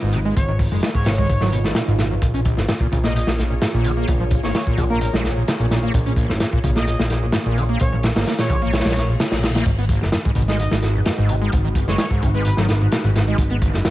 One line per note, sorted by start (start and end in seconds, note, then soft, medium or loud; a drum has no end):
0.00 0.33 G#1 medium
0.00 0.15 G#2 loud
0.00 2.18 G#3 medium
0.00 2.18 D#4 medium
0.00 9.62 F4 medium
0.00 2.18 B4 medium
0.13 0.20 C#3 medium
0.13 closed hi-hat medium
0.25 0.34 G#3 loud
0.36 0.68 G#1 loud
0.36 0.40 G#2 medium
0.36 0.50 C#5 loud
0.36 kick loud
0.36 closed hi-hat medium
0.48 0.52 D#3 medium
0.59 0.63 G#1 medium
0.59 kick medium
0.59 open hi-hat medium
0.72 0.81 F#1 medium
0.72 0.81 G#3 medium
0.83 0.89 G#3 medium
0.83 snare loud
0.83 closed hi-hat medium
0.95 1.07 G#2 loud
0.95 1.60 C#5 loud
0.95 kick medium
1.06 1.38 G#1 loud
1.06 1.13 C#3 medium
1.06 snare loud
1.06 closed hi-hat medium
1.18 1.27 G#3 loud
1.18 kick medium
1.29 1.33 G#2 medium
1.29 kick medium
1.29 closed hi-hat medium
1.41 1.73 G#1 medium
1.41 1.50 F#3 loud
1.41 snare soft
1.52 1.59 B2 medium
1.52 closed hi-hat medium
1.64 1.77 G#2 medium
1.64 snare soft
1.75 1.82 B2 medium
1.75 snare loud
1.75 closed hi-hat medium
1.87 2.19 G#1 medium
1.87 1.94 G#2 medium
1.87 closed hi-hat soft
1.98 2.05 A#2 medium
1.98 snare medium
1.98 closed hi-hat medium
2.11 2.15 F#2 medium
2.22 2.54 A#1 loud
2.22 2.26 A#2 medium
2.22 9.62 A#3 medium
2.22 9.62 G#4 medium
2.22 9.62 C#5 medium
2.22 kick loud
2.22 closed hi-hat loud
2.34 2.40 C#4 medium
2.34 closed hi-hat soft
2.45 2.59 A#1 medium
2.45 kick medium
2.45 closed hi-hat medium
2.57 2.67 G#1 medium
2.57 2.61 A#2 medium
2.57 snare soft
2.68 2.73 G#2 loud
2.68 snare loud
2.68 closed hi-hat medium
2.80 2.87 A#2 loud
2.80 kick loud
2.92 3.24 A#1 loud
2.92 2.98 C#3 medium
2.92 kick loud
2.92 closed hi-hat medium
3.04 3.13 A#3 loud
3.04 3.11 D#5 medium
3.04 snare soft
3.15 3.19 A#2 medium
3.15 3.23 D#5 medium
3.15 closed hi-hat loud
3.27 3.58 A#1 medium
3.27 3.31 A#3 loud
3.27 snare medium
3.38 3.42 A#1 medium
3.38 snare soft
3.38 closed hi-hat medium
3.50 3.54 A#2 medium
3.62 3.66 G#2 loud
3.62 snare loud
3.62 closed hi-hat medium
3.74 4.05 A#1 medium
3.74 3.86 A#2 loud
3.84 3.92 D#3 medium
3.84 closed hi-hat medium
3.97 4.06 A#3 loud
4.08 4.40 A#1 medium
4.08 4.12 A#2 medium
4.08 kick loud
4.08 closed hi-hat medium
4.20 4.24 F3 medium
4.31 4.35 A#1 medium
4.31 kick medium
4.31 closed hi-hat medium
4.43 4.53 G#1 medium
4.43 4.53 A#3 medium
4.43 4.51 C#5 medium
4.43 snare soft
4.55 4.61 A#3 medium
4.55 4.62 C#5 medium
4.55 snare loud
4.55 closed hi-hat medium
4.67 4.79 A#2 loud
4.67 kick medium
4.78 5.10 A#1 loud
4.78 4.85 D#3 medium
4.78 kick loud
4.78 closed hi-hat medium
4.90 4.99 A#3 loud
4.90 4.97 A#4 medium
5.01 5.05 A#2 medium
5.01 5.09 A#4 medium
5.01 closed hi-hat medium
5.13 5.44 A#1 medium
5.13 5.23 G#3 loud
5.13 snare medium
5.24 5.29 A#1 medium
5.24 snare medium
5.24 closed hi-hat medium
5.37 5.43 A#2 medium
5.48 5.52 C#3 medium
5.48 snare loud
5.48 closed hi-hat medium
5.59 5.91 A#1 medium
5.59 5.66 A#2 loud
5.59 closed hi-hat soft
5.71 5.78 A#2 medium
5.71 snare medium
5.71 closed hi-hat medium
5.83 5.92 A#3 loud
5.94 6.26 A#1 loud
5.94 5.98 A#2 medium
5.94 kick loud
5.94 closed hi-hat loud
6.06 6.12 C#4 medium
6.06 closed hi-hat soft
6.16 6.31 A#1 medium
6.16 kick medium
6.16 closed hi-hat medium
6.29 6.39 G#1 medium
6.29 6.33 A#2 medium
6.29 snare soft
6.40 6.45 G#2 loud
6.40 snare loud
6.40 closed hi-hat loud
6.53 6.59 A#2 loud
6.53 kick medium
6.64 6.96 A#1 loud
6.64 6.70 C#3 medium
6.64 kick medium
6.64 closed hi-hat medium
6.76 6.85 A#3 loud
6.76 6.83 D#5 medium
6.76 snare medium
6.87 6.91 A#2 medium
6.87 6.95 D#5 medium
6.87 closed hi-hat loud
6.99 7.30 A#1 medium
6.99 7.03 A#3 loud
6.99 snare medium
7.10 7.14 A#1 medium
7.10 snare soft
7.10 closed hi-hat medium
7.22 7.26 A#2 medium
7.32 7.38 G#2 loud
7.32 snare loud
7.32 closed hi-hat medium
7.46 7.77 A#1 medium
7.46 7.59 A#2 loud
7.57 7.64 D#3 medium
7.57 closed hi-hat medium
7.69 7.78 A#3 loud
7.80 8.12 A#1 loud
7.80 7.84 A#2 medium
7.80 7.94 C#5 loud
7.80 kick loud
7.80 closed hi-hat medium
7.92 7.96 F3 medium
8.03 8.08 A#1 medium
8.03 snare loud
8.03 closed hi-hat medium
8.16 8.25 G#1 medium
8.16 8.25 A#3 medium
8.16 snare loud
8.16 closed hi-hat medium
8.26 8.33 A#3 medium
8.26 snare loud
8.26 closed hi-hat medium
8.38 8.51 A#2 loud
8.38 9.04 C#5 loud
8.38 snare medium
8.38 closed hi-hat medium
8.50 8.82 A#1 loud
8.50 8.57 D#3 medium
8.50 kick medium
8.50 closed hi-hat medium
8.62 8.71 A#3 loud
8.73 8.77 A#2 medium
8.73 snare medium
8.73 closed hi-hat medium
8.73 reverse cymbal medium
8.79 snare medium
8.79 closed hi-hat medium
8.85 9.17 A#1 medium
8.85 8.95 G#3 loud
8.85 snare loud
8.85 closed hi-hat medium
8.91 snare medium
8.91 closed hi-hat medium
8.96 9.00 A#1 medium
8.96 snare medium
8.96 closed hi-hat medium
9.09 9.15 A#2 medium
9.20 9.24 C#3 medium
9.20 snare loud
9.20 closed hi-hat medium
9.32 9.63 A#1 medium
9.32 9.38 A#2 loud
9.32 snare medium
9.32 closed hi-hat medium
9.43 9.50 A#2 medium
9.43 snare loud
9.43 closed hi-hat medium
9.55 9.64 A#3 loud
9.55 snare medium
9.55 closed hi-hat medium
9.66 9.98 G#1 loud
9.66 9.70 G#2 medium
9.66 13.90 G#3 medium
9.66 13.90 D#4 medium
9.66 13.90 F#4 medium
9.66 13.90 B4 medium
9.66 kick loud
9.66 closed hi-hat medium
9.78 9.85 B3 medium
9.78 closed hi-hat soft
9.89 10.03 G#1 medium
9.89 kick medium
9.89 closed hi-hat medium
10.02 10.11 F#1 medium
10.02 10.05 G#2 medium
10.02 snare soft
10.12 10.17 F#2 loud
10.12 snare loud
10.12 closed hi-hat medium
10.25 10.31 G#2 loud
10.25 kick loud
10.35 10.68 G#1 loud
10.35 10.43 B2 medium
10.35 kick loud
10.35 closed hi-hat medium
10.48 10.57 G#3 loud
10.48 10.55 D#5 medium
10.48 snare soft
10.59 10.63 G#2 medium
10.59 10.67 D#5 medium
10.59 closed hi-hat medium
10.71 11.03 G#1 medium
10.71 10.75 G#3 loud
10.71 snare medium
10.82 10.96 G#1 medium
10.82 snare soft
10.82 closed hi-hat medium
10.95 11.01 G#2 medium
11.05 11.10 F#2 loud
11.05 snare loud
11.05 closed hi-hat medium
11.18 11.49 G#1 medium
11.18 11.31 G#2 loud
11.29 11.36 C#3 medium
11.29 closed hi-hat medium
11.42 11.51 G#3 loud
11.52 11.85 G#1 loud
11.52 11.56 G#2 medium
11.52 kick loud
11.52 closed hi-hat medium
11.65 11.68 D#3 medium
11.75 11.80 G#1 medium
11.75 kick medium
11.75 closed hi-hat medium
11.88 11.97 F#1 medium
11.88 11.97 G#3 medium
11.88 11.95 C#5 medium
11.88 snare soft
11.98 12.06 G#3 medium
11.98 12.07 C#5 medium
11.98 snare loud
11.98 closed hi-hat medium
12.11 12.24 G#2 loud
12.11 kick medium
12.22 12.54 G#1 loud
12.22 12.29 C#3 medium
12.22 kick loud
12.22 closed hi-hat medium
12.34 12.43 G#3 loud
12.34 12.41 B4 medium
12.45 12.50 G#2 medium
12.45 12.53 B4 medium
12.45 closed hi-hat medium
12.57 12.89 G#1 medium
12.57 12.67 F#3 loud
12.57 snare soft
12.68 12.73 G#1 medium
12.68 snare medium
12.68 closed hi-hat medium
12.81 12.87 G#2 medium
12.92 12.96 B2 medium
12.92 snare loud
12.92 closed hi-hat loud
13.04 13.35 G#1 medium
13.04 13.10 G#2 loud
13.04 closed hi-hat soft
13.16 13.22 G#2 medium
13.16 snare medium
13.16 closed hi-hat medium
13.28 13.37 G#3 loud
13.38 13.70 G#1 loud
13.38 13.43 G#2 medium
13.38 kick loud
13.38 closed hi-hat medium
13.50 13.57 B3 medium
13.50 closed hi-hat soft
13.62 13.75 G#1 medium
13.62 kick loud
13.62 closed hi-hat medium
13.74 13.83 F#1 medium
13.74 13.77 G#2 medium
13.74 snare soft
13.85 13.89 F#2 loud
13.85 snare loud
13.85 closed hi-hat loud